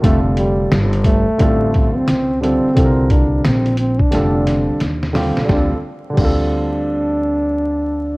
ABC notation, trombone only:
X:1
M:4/4
L:1/16
Q:"Swing 16ths" 1/4=88
K:Dm
V:1 name="Trombone"
A,2 G,2 z2 A,4- A, C3 C2- | C2 D2 C2 C D6- D z2 | D z3 D12 |]